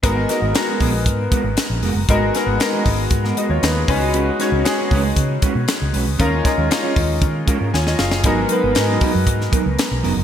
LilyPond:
<<
  \new Staff \with { instrumentName = "Grand piano" } { \time 4/4 \key gis \dorian \tempo 4 = 117 << { r1 | r2 r8 <fis' dis''>16 <eis' cis''>16 <dis' b'>16 <b gis'>8 r16 | r1 | r2. <eis' cis'' gis''>16 dis''16 <gis' eis''>16 gis''16~ |
gis''16 r2. r8. | } \\ { <gis b dis' fis' ais'>8 <gis b dis' fis' ais'>8 <gis b dis' fis' ais'>2 r4 | <gis b dis' fis' ais'>8 <gis b dis' fis' ais'>8 <gis b dis' fis' ais'>2 r8 <gis cis' dis' eis' fis' b'>8~ | <gis cis' dis' eis' fis' b'>8 <gis cis' dis' fis' cis''>8 <gis cis' dis' fis' gis'>2 r4 | <gis cis' dis' eis' ais'>8 <gis cis' dis' eis' ais'>8 <gis cis' dis' eis' ais'>2 r4 |
<gis b dis' fis' ais'>8 <gis b dis' fis' b'>8 <gis b dis' fis' ais'>2 r4 | } >> }
  \new Staff \with { instrumentName = "Clean electric guitar" } { \time 4/4 \key gis \dorian <gis b fis' ais'>16 r16 <gis b fis' ais'>16 <gis b fis' ais'>16 r16 <gis b fis' ais'>16 <gis b fis' ais'>16 r8. <gis b fis' ais'>16 r8. <gis b fis' ais'>16 r16 | <gis b fis' ais'>16 r8 <gis b fis' ais'>16 r16 <gis b fis' b'>16 r8. <gis b fis' ais'>16 <gis b fis' ais'>16 r4 r16 | <gis cis' fis' b'>16 r16 <gis cis' fis' b'>16 <gis cis' fis' b'>16 r16 <gis cis' fis' b'>16 <gis cis' fis' b'>16 r8. <gis cis' fis' b'>16 r8. <gis cis' fis' b'>16 r16 | <gis cis' eis' ais'>16 r8 <gis cis' eis' ais'>16 r16 <gis cis' eis' cis''>16 r4 <gis cis' eis' ais'>16 <gis cis' eis' ais'>16 r4 |
<fis b dis' ais'>16 r16 <fis b dis' ais'>16 <fis b dis' ais'>16 r16 <fis b dis' ais'>16 <fis b dis' ais'>16 r8. <fis b dis' ais'>16 r8. <fis b dis' ais'>16 r16 | }
  \new Staff \with { instrumentName = "Fingered electric bass" } { \clef bass \time 4/4 \key gis \dorian gis,,8 r16 gis,,16 r8 ais,,8 gis,8 r16 gis,,16 r16 ais,,16 eis,,16 fis,,16 | gis,,8 r16 gis,,16 r8 gis,,8 gis,8 r16 dis,16 dis,8 cis,8~ | cis,8 r16 cis,16 r8 cis,8 cis8 r16 b,16 r16 cis,16 b,,16 cis,16 | dis,8 r16 dis,16 r8 dis,8 dis8 r16 gis,16 dis,8 fis,,8 |
gis,,8 r16 gis,,16 gis,8 r16 fis,16 gis,8 r16 cis,16 r16 b,,16 eis,,16 fis,,16 | }
  \new DrumStaff \with { instrumentName = "Drums" } \drummode { \time 4/4 <hh bd>8 <hh sn>8 <hh sn>8 <hho bd>8 <hh bd>8 <hh bd>8 <hh sn>8 hho8 | <hh bd>8 <hh sn>8 <hh sn>8 <hho bd>8 <hh bd>16 sn16 hh8 <hh sn>8 <hho bd>8 | hh8 <hh sn>8 <hh sn>8 <hho bd>8 <hh bd>8 <hh bd>8 <hh sn>8 hho8 | <hh bd>8 <hh bd sn>8 <hh sn>8 <hho bd>8 <hh bd>8 <hh bd>8 sn16 sn16 sn16 sn16 |
<hh bd>8 hh8 <hh sn>8 <hho bd>8 <hh bd>16 sn16 <hh bd>8 <hh sn>8 hho8 | }
>>